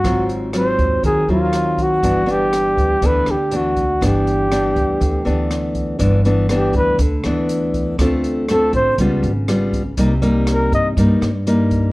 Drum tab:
HH |xxxxxxxx|xxxxxxxx|xxxxxxxx|xxxxxxxx|
SD |r-r---r-|--r--r--|r-r---r-|--r--r--|
BD |o--oo--o|o--oo--o|o--oo--o|o--oo--o|

HH |xxxxxxxx|xxxxxxxx|
SD |r-r---r-|--r--r--|
BD |o--oo--o|o--oo--o|